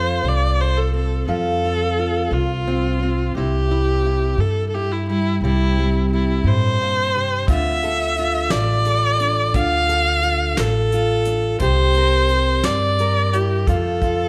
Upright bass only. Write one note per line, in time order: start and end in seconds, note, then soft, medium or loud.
0.00 0.19 F2 medium
0.23 1.23 C2 medium
1.28 2.27 F2 medium
2.31 3.31 C2 medium
3.35 4.34 C2 medium
4.38 5.37 G2 medium
5.41 6.41 C2 medium
6.44 7.44 G2 medium
7.48 8.47 D2 medium
8.52 9.51 A1 medium
9.54 10.54 D2 medium
10.58 11.57 A1 medium
11.60 12.60 C2 medium
12.64 13.64 G2 medium
13.67 14.29 F2 medium